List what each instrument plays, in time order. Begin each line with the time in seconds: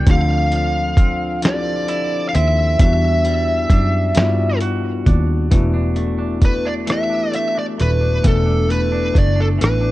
Already playing: clean electric guitar G3 D4 F#4, lead electric guitar G5
0.06 fingered electric bass D2, clean electric guitar D3, tine electric piano F3 C4 D4 F4, kick, closed hi-hat
0.10 tine electric piano G4, lead electric guitar F5
0.17 tine electric piano A4
0.52 clean electric guitar F3, closed hi-hat
0.97 clean electric guitar C4, kick, closed hi-hat
1.42 tine electric piano F3 C4 D4 E4, clean electric guitar F3, lead electric guitar D5, snare, closed hi-hat
1.47 tine electric piano G4
1.53 tine electric piano A4
1.88 clean electric guitar E4, closed hi-hat
2.29 lead electric guitar F5
2.35 fingered electric bass D#2, clean electric guitar C4, lead electric guitar E5, closed hi-hat
2.78 fingered electric bass E2, clean electric guitar E3, tine electric piano G3 B3 D4 E4, lead electric guitar E5, kick, closed hi-hat
2.83 tine electric piano F#4
3.25 clean electric guitar G3, closed hi-hat
3.70 fingered electric bass F#2, clean electric guitar D4, kick, closed hi-hat
4.15 fingered electric bass G2, tine electric piano G3 B3 D4 E4, clean electric guitar G3, snare, closed hi-hat
4.19 tine electric piano F4
4.26 tine electric piano F#4
4.61 clean electric guitar F#4, closed hi-hat
5.06 fingered electric bass D#2, clean electric guitar D4, kick, closed hi-hat
5.50 fingered electric bass E1, clean electric guitar E3, tine electric piano A3 B3 D4 E4, kick, closed hi-hat
5.55 tine electric piano F#4
5.74 clean electric guitar D4
5.96 clean electric guitar A3, closed hi-hat
6.19 clean electric guitar D4
6.42 clean electric guitar A3, lead electric guitar B4, kick, closed hi-hat
6.65 clean electric guitar D4, lead electric guitar D5
6.87 clean electric guitar E3, tine electric piano A3 B3 D4 E4, cross-stick, closed hi-hat
6.91 tine electric piano G4, lead electric guitar E5
6.98 tine electric piano A4
7.10 clean electric guitar D4
7.31 clean electric guitar A3, closed hi-hat
7.36 lead electric guitar E5
7.55 clean electric guitar D4, lead electric guitar D5
7.78 fingered electric bass D#1, clean electric guitar A3, lead electric guitar B4, closed hi-hat
8.01 clean electric guitar D4
8.23 fingered electric bass E1, clean electric guitar E3, tine electric piano A3 B3 D4 E4, kick, closed hi-hat
8.27 lead electric guitar A4, tine electric piano A4
8.46 clean electric guitar D4
8.69 clean electric guitar A3, lead electric guitar B4, closed hi-hat
8.92 clean electric guitar D4
9.14 fingered electric bass F#1, clean electric guitar A3, lead electric guitar D5, kick, closed hi-hat
9.36 clean electric guitar D4
9.40 lead electric guitar A4
9.58 clean electric guitar E3, tine electric piano A3 B3, lead electric guitar B4, closed hi-hat
9.62 fingered electric bass A1, tine electric piano D4 E4 A4, cross-stick
9.81 clean electric guitar D4